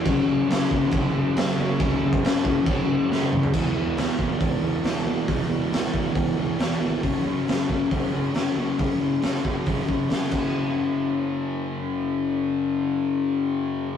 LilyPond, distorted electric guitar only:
\new Staff \with { instrumentName = "Distorted electric guitar" } { \clef bass \time 4/4 \key e \lydian \tempo 4 = 137 <fis, cis fis>4 <fis, cis fis>8 <fis, cis fis>8 <fis, cis fis>4 <fis, cis fis>8 <fis, cis fis>8 | <fis, cis fis>4 <fis, cis fis>8 <fis, cis fis>8 <fis, cis fis>4 <fis, cis fis>8 <fis, cis fis>8 | <e, b, e>8 <e, b, e>8 <e, b, e>8 <e, b, e>8 <e, b, e>8 <e, b, e>8 <e, b, e>8 <e, b, e>8 | <e, b, e>8 <e, b, e>8 <e, b, e>8 <e, b, e>8 <e, b, e>8 <e, b, e>8 <e, b, e>8 <e, b, e>8 |
<fis, cis fis>8 <fis, cis fis>8 <fis, cis fis>8 <fis, cis fis>8 <fis, cis fis>8 <fis, cis fis>8 <fis, cis fis>8 <fis, cis fis>8 | <fis, cis fis>8 <fis, cis fis>8 <fis, cis fis>8 <fis, cis fis>8 <fis, cis fis>8 <fis, cis fis>8 <fis, cis fis>8 <fis, cis fis>8~ | <fis, cis fis>1~ | <fis, cis fis>1 | }